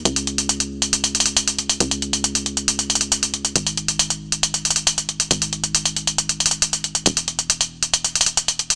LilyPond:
<<
  \new Staff \with { instrumentName = "Analog synth bass" } { \clef bass \time 4/4 \key cis \dorian \tempo 4 = 137 cis,1 | cis,1 | gis,,1 | gis,,1 |
e,,1 | }
  \new DrumStaff \with { instrumentName = "Drums" } \drummode { \time 4/4 hh16 hh16 hh16 hh16 hh16 hh8 hh16 hh16 hh16 hh32 hh32 hh16 hh16 hh16 hh16 hh16 | hh16 hh16 hh16 hh16 hh16 hh16 hh16 hh16 hh16 hh16 hh32 hh32 hh16 hh16 hh16 hh16 hh16 | hh16 hh16 hh16 hh16 hh16 hh8 hh16 hh16 hh16 hh32 hh32 hh16 hh16 hh16 hh16 hh16 | hh16 hh16 hh16 hh16 hh16 hh16 hh16 hh16 hh16 hh16 hh32 hh32 hh16 hh16 hh16 hh16 hh16 |
hh16 hh16 hh16 hh16 hh16 hh8 hh16 hh16 hh16 hh32 hh32 hh16 hh16 hh16 hh16 hh16 | }
>>